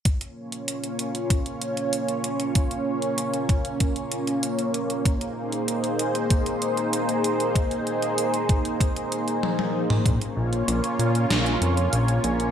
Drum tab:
HH |xx-xxxxxxxxxxxxx|xx-xxxxxxxxxxxxx|xx-xxxxxxxxxxxxx|xxxxxxxxxxxx----|
SD |----------------|----------------|----------------|----------------|
T1 |----------------|----------------|----------------|------------oo--|
T2 |----------------|----------------|----------------|---------------o|
BD |o-------o-------|o-----o-o-------|o-------o-------|o-----o-o-------|

HH |xx-xxxxxxxxxxxxx|
SD |--------o-------|
T1 |----------------|
T2 |----------------|
BD |o---------------|